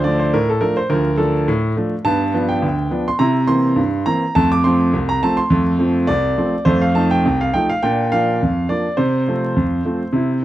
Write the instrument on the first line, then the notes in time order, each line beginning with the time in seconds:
grand piano
Already playing: D2 F3 C5
0.04 F3 A3 D4 D5
0.19 C5
0.34 A2 A#4
0.50 A4
0.61 F3 A3 D4 A#4
0.77 C5
0.90 D2 F3 A#4
1.17 F3 A3 D4 A4
1.48 A2
1.76 F3 A3 D4
2.05 G2 B3 A5
2.34 F3 B3 D4
2.49 G5
2.62 D2
2.91 F3 B3 D4
3.08 C6
3.19 C3 E4 A#5
3.47 E3 A#3 C4 C6
3.76 G2
4.06 E3 A#3 C4 A#5
4.35 F2 A3 A5
4.52 D6
4.64 F3 A3 C4 C6
4.93 C2
5.09 A#5
5.23 F3 A3 C4 A5
5.37 C6
5.50 F2 A3
5.79 F3 A3 C4
6.07 C2 D5
6.37 F3 A3 C4
6.65 F2 A3 C5
6.81 F5
6.95 F3 A3 D#4 A5
7.11 G5
7.25 C2
7.41 F5
7.54 F3 A3 D#4 G5
7.69 F5
7.83 A#2 D4 G5
8.12 F3 A#3 D4 F5
8.42 F2
8.69 F3 A#3 D4 D5
8.97 C3 C5
9.28 F3 A3 C4
9.56 F2
9.85 F3 A3 C4
10.13 C3 E4